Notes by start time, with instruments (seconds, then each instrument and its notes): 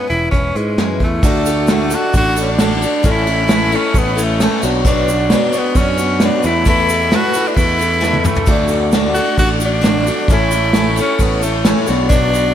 0.07 picked electric bass E1, tenor saxophone E4, steel-string acoustic guitar E4 B4, closed hi-hat
0.12 steel-string acoustic guitar C#4
0.31 picked electric bass E1, steel-string acoustic guitar G#3 C#4 E4 B4, tenor saxophone C#4, kick, closed hi-hat
0.55 picked electric bass G#2, tenor saxophone G#3, steel-string acoustic guitar C#4 E4 B4, closed hi-hat
0.78 picked electric bass F#2, steel-string acoustic guitar E3 G#3 C#4 E4 B4, snare, closed hi-hat
1.00 picked electric bass E2, tenor saxophone A3, steel-string acoustic guitar B4, kick, closed hi-hat
1.04 steel-string acoustic guitar C#4 E4
1.22 picked electric bass D2, steel-string acoustic guitar D3 A3 D4 F#4, tonewheel organ A4 D5 D6, kick, crash, shaker
1.26 steel-string acoustic guitar A4
1.46 steel-string acoustic guitar D4 F#4 A4, ride, shaker
1.67 steel-string acoustic guitar D3 A3 D4 F#4 A4, snare, ride, shaker
1.91 steel-string acoustic guitar D4 F#4 A4, ride, shaker
1.95 tenor saxophone F#4
2.13 picked electric bass A1, steel-string acoustic guitar A3 D4 F#4 A4, tenor saxophone F#4, kick, ride, shaker
2.36 steel-string acoustic guitar D4 F#4 A4, ride, shaker
2.42 tenor saxophone D4
2.58 steel-string acoustic guitar D3 A3 D4 F#4 A4, snare, ride, shaker
2.82 steel-string acoustic guitar D4 F#4 A4, ride, shaker
3.03 picked electric bass A1, steel-string acoustic guitar A2 E3 A3 C#4 E4 A4, tonewheel organ C#5 E5 C#6, kick, ride, shaker
3.11 tenor saxophone E4
3.26 steel-string acoustic guitar A3 C#4 E4 A4, ride
3.48 steel-string acoustic guitar A2 E3 A3 C#4 E4 A4, snare, ride, shaker
3.72 steel-string acoustic guitar A3 C#4 E4 A4, ride
3.76 tenor saxophone C#4
3.94 picked electric bass A1, steel-string acoustic guitar A3 C#4 E4 A4, kick, ride, shaker
3.98 tenor saxophone B3
4.16 steel-string acoustic guitar A3 C#4 E4 A4, ride, shaker
4.23 tenor saxophone A3
4.40 steel-string acoustic guitar A2 E3 A3 C#4 E4 A4, snare, ride, shaker
4.62 picked electric bass B1, clean electric guitar B2 F#3, steel-string acoustic guitar B3 D4 F#4 C#5, tonewheel organ B4 F#5, ride, shaker
4.84 steel-string acoustic guitar B2 F#3 B3 D4 F#4 C#5, tenor saxophone D4, kick, crash, shaker
5.07 steel-string acoustic guitar B3 D4 F#4 C#5, ride, shaker
5.30 steel-string acoustic guitar B2 F#3 B3 D4, snare, ride, shaker
5.34 steel-string acoustic guitar F#4 C#5
5.53 steel-string acoustic guitar B3 D4 F#4 C#5, ride, shaker
5.57 tenor saxophone B3
5.75 picked electric bass F#2, steel-string acoustic guitar B3, tenor saxophone C#4, kick, ride, shaker
5.79 steel-string acoustic guitar D4 F#4 C#5
5.97 steel-string acoustic guitar B3 D4 F#4 C#5, ride, shaker
6.20 steel-string acoustic guitar B2 F#3 B3 D4 F#4 C#5, snare, ride, shaker
6.25 tenor saxophone D4
6.42 picked electric bass E2, clean electric guitar A3, tenor saxophone E4, steel-string acoustic guitar E4 A4 B4, tonewheel organ E5 A5 E6, ride, shaker
6.46 clean electric guitar E3
6.65 steel-string acoustic guitar E3 A3 E4 A4 B4, tenor saxophone E4, kick, ride, shaker
6.87 steel-string acoustic guitar E4 A4 B4, ride, shaker
7.02 shaker
7.11 steel-string acoustic guitar E3 A3 E4 A4 B4, snare, ride, shaker
7.15 tenor saxophone F#4
7.33 steel-string acoustic guitar E4 A4 B4, ride, shaker
7.47 tenor saxophone D4, shaker
7.54 picked electric bass E2, steel-string acoustic guitar A3 E4 A4 B4, tenor saxophone E4, kick, ride
7.58 shaker
7.78 steel-string acoustic guitar E4 A4 B4, ride, shaker
7.93 shaker
8.00 steel-string acoustic guitar E3 A3 E4 A4 B4, snare, shaker
8.14 high tom
8.24 tenor saxophone A3, steel-string acoustic guitar E4 A4 B4, mid tom, shaker
8.35 floor tom, shaker
8.46 picked electric bass D2, steel-string acoustic guitar D3 A3 D4 F#4 A4, clean electric guitar F#3, tonewheel organ F#5, kick, crash, shaker
8.50 tonewheel organ A4 D5 D6, clean electric guitar D5
8.68 steel-string acoustic guitar F#4 A4, ride, shaker
8.72 steel-string acoustic guitar D4
8.92 steel-string acoustic guitar D3 A3 D4 F#4 A4, clean electric guitar D5, snare, ride, shaker
9.14 clean electric guitar A3 D5, tenor saxophone F#4, steel-string acoustic guitar F#4 A4, ride, shaker
9.19 steel-string acoustic guitar D4
9.37 picked electric bass A1, steel-string acoustic guitar A3 D4 F#4 A4, tenor saxophone F#4, kick, ride, shaker
9.60 steel-string acoustic guitar D4 F#4 A4, ride, shaker
9.65 tenor saxophone D4
9.81 steel-string acoustic guitar D3 A3 D4 F#4 A4, clean electric guitar F#3, snare, ride, shaker
9.86 clean electric guitar D5
10.05 clean electric guitar A3 D5, steel-string acoustic guitar D4 F#4 A4, ride, shaker
10.28 picked electric bass A1, steel-string acoustic guitar A2 E3 A3 C#4 E4, tonewheel organ C#5 E5 C#6, clean electric guitar C#5, kick, ride, shaker
10.32 tenor saxophone E4, steel-string acoustic guitar A4
10.51 steel-string acoustic guitar C#4 E4 A4, ride, shaker
10.55 steel-string acoustic guitar A3
10.73 steel-string acoustic guitar A2 E3 A3 C#4, clean electric guitar C#5, snare, ride, shaker
10.77 steel-string acoustic guitar E4 A4
10.96 steel-string acoustic guitar A4, clean electric guitar C#5, ride, shaker
11.00 steel-string acoustic guitar A3 C#4 E4, tenor saxophone C#4
11.19 picked electric bass A1, steel-string acoustic guitar A3 C#4 E4 A4, tenor saxophone B3, kick, ride, shaker
11.42 tenor saxophone A3, steel-string acoustic guitar A3 C#4 E4 A4, ride, shaker
11.65 steel-string acoustic guitar A2 E3 A3 C#4 E4 A4, clean electric guitar C#5, snare, ride, shaker
11.86 picked electric bass B1, steel-string acoustic guitar B3 D4 F#4 C#5, tonewheel organ B4 F#5 C#6, ride, shaker
11.90 clean electric guitar B2 F#3
12.08 steel-string acoustic guitar B2 F#3 B3 D4 F#4 C#5, tenor saxophone D4, kick, crash, shaker
12.31 steel-string acoustic guitar B3 D4 F#4 C#5, ride, shaker